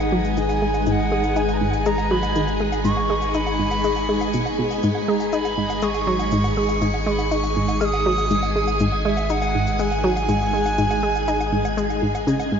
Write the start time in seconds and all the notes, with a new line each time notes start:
Already playing: G#1 G#3 D#4 G#4 B4 F#5
0.00 cabasa, low woodblock
0.12 F#3
0.25 cabasa, low woodblock
0.37 D#3 G#5, cabasa
0.49 cabasa, low woodblock
0.62 G#3
0.74 cabasa, low woodblock
0.86 G#2 G#5, cabasa
0.92 F#5
0.99 low woodblock
1.12 G#3
1.24 cabasa, low woodblock
1.36 D#4 G#5, cabasa
1.49 G#5, cabasa, low woodblock
1.54 G#5 A#5
1.61 G#2
1.71 F#5 G#5, cabasa, low woodblock
1.86 G#3 A#5, cabasa
1.98 cabasa, low woodblock
2.11 F#3 B5
2.23 cabasa, low woodblock
2.35 D#3, cabasa
2.47 cabasa, low woodblock
2.60 G#3
2.72 cabasa, low woodblock
2.85 G#2 C#6, cabasa
2.97 low woodblock
3.10 G#3
3.22 cabasa, low woodblock
3.34 D#4 B5, cabasa
3.47 cabasa, low woodblock
3.59 G#2
3.71 cabasa, low woodblock
3.84 G#3, cabasa
3.96 cabasa, low woodblock
4.09 G#3
4.21 cabasa, low woodblock
4.33 B2, cabasa
4.46 cabasa, low woodblock
4.59 B2
4.71 cabasa, low woodblock
4.83 G#1 G#2, cabasa
4.95 low woodblock
5.08 G#3 A#5
5.20 cabasa, low woodblock
5.32 D#4 B5, cabasa
5.45 cabasa, low woodblock
5.58 G#2
5.70 cabasa, low woodblock
5.82 G#3 C#6, cabasa
5.94 cabasa, low woodblock
6.07 F#3
6.19 cabasa, low woodblock
6.31 G#2, cabasa
6.44 cabasa, low woodblock
6.57 G#3
6.69 cabasa, low woodblock
6.82 G#2, cabasa
6.94 low woodblock
7.06 G#3 C#6
7.11 B5
7.19 cabasa, low woodblock
7.31 D#4 C#6, cabasa
7.43 cabasa, low woodblock
7.57 G#2
7.69 cabasa, low woodblock
7.80 G#3 F6, cabasa
7.85 D#6
7.93 cabasa, low woodblock
8.06 F#3
8.18 cabasa, low woodblock
8.30 G#2, cabasa
8.43 cabasa, low woodblock
8.56 G#3
8.68 cabasa, low woodblock
8.80 G#2, cabasa
8.92 low woodblock
9.05 G#3 E5
9.17 cabasa, low woodblock
9.30 D#4 F#5, cabasa
9.42 cabasa, low woodblock
9.55 G#2
9.67 cabasa, low woodblock
9.79 G#3 G#5, cabasa
9.91 cabasa, low woodblock
10.04 F#3
10.16 cabasa, low woodblock
10.29 G#2, cabasa
10.41 cabasa, low woodblock
10.53 G#3
10.66 cabasa, low woodblock
10.78 G#2, cabasa
10.91 cabasa, low woodblock
11.03 G#3
11.16 cabasa, low woodblock
11.28 D#4, cabasa
11.41 cabasa, low woodblock
11.53 G#2
11.65 cabasa, low woodblock
11.77 G#3, cabasa
11.90 cabasa, low woodblock
12.02 G#2
12.15 cabasa, low woodblock
12.27 C#3, cabasa
12.40 cabasa, low woodblock
12.52 G#2